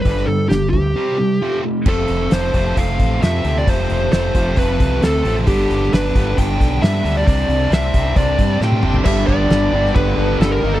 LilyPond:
<<
  \new Staff \with { instrumentName = "Lead electric guitar" } { \time 4/4 \key g \mixolydian \tempo 4 = 133 b'8 a'8 g'8 g'2 r8 | a'4 c''4 f''4 e''8. d''16 | c''4 c''4 b'4 a'8. r16 | g'4 b'4 g''4 e''8. d''16 |
d''4 e''4 d''4 g''8. r16 | e''8 d''4. b'4 a'16 bes'8 a'16 | }
  \new Staff \with { instrumentName = "Tonewheel organ" } { \time 4/4 \key g \mixolydian << { r1 | r1 | r1 | r1 |
r1 | <c' d' e' f' g' a' b' c'' d'' e'' f''>8 r2. r8 | } \\ { r1 | r1 | r1 | r1 |
r1 | <g b d' b'>2.~ <g b d' b'>8 <g bes ees' bes'>8 | } >> }
  \new Staff \with { instrumentName = "Distorted electric guitar" } { \clef bass \time 4/4 \key g \mixolydian <g, d g>8 <g, d>8 <g, d>8 <g, d>8 <c g c'>8 <c g>8 <f a c'>8 <f a>8 | <f, c f a c'>4 <f, c f a c'>8 <f, c f a c'>8 <f, c f a c'>4 <f, c f a c'>8 <f, c f a c'>8 | <f, c f a c'>4 <f, c f a c'>8 <f, c f a c'>8 <f, c f a c'>4 <f, c f a c'>8 <f, c f a c'>8 | <g, d g b d'>4 <g, d g b d'>8 <g, d g b d'>8 <g, d g b d'>4 <g, d g b d'>8 <g, d g b d'>8 |
<c g c' d'>4 <c g c' d'>8 <c g c' d'>8 <c g c' d'>4 <c g c' d'>8 <c g c' d'>8 | <g, d g b d'>8 <g, d g b d'>8 <g, d g b d'>8 <g, d g b d'>8 <g, d g b d'>8 <g, d g b d'>8 <g, d g b d'>8 <g, ees g bes ees'>8 | }
  \new Staff \with { instrumentName = "Overdriven electric guitar" } { \clef bass \time 4/4 \key g \mixolydian r1 | r1 | r1 | r1 |
r1 | <g, d g>4. <g, d g>2 <ees bes ees'>8 | }
  \new Staff \with { instrumentName = "Fingered electric bass" } { \clef bass \time 4/4 \key g \mixolydian g,,8 g,8 g,,8 d,8 r2 | f,,8 f,,8 f,,8 f,,8 f,,8 a,,8 f,8 d,8 | f,,8 f,,8 f,,8 f,,8 f,,8 c,8 d,8 a,,8 | g,,8 g,,8 g,,8 g,,8 g,,8 b,,8 g,8 d,8 |
c,8 c,8 c,8 c,8 c,8 g,8 a,8 g,,8 | g,,8 g,,8 g,,8 g,,8 g,,8 g,,8 g,,8 g,,8 | }
  \new DrumStaff \with { instrumentName = "Drums" } \drummode { \time 4/4 <hho bd>16 sn8. <hho sn>8 bd8 r4 r4 | <cymc bd>8 hho8 <hho sn>8 <hho bd>8 <hho bd>8 <hho bd>8 <hho sn>8 hho16 sn16 | <hho bd>8 hho8 <hho sn>8 <hho bd>8 <hho bd>8 <hho bd>8 <hho sn>8 hho8 | <hho bd>8 hho16 sn16 <hho sn>8 <hho bd>8 <hho bd>8 <hho bd>8 <hho sn>8 hho8 |
<hho bd>8 hho8 <hho sn>8 <hho bd>8 <hho bd>8 <hho bd>8 sn16 tommh16 toml16 tomfh16 | <cymc bd>16 sn16 bd8 <cymc sn>8. sn16 <cymc bd>4 <cymc sn>4 | }
>>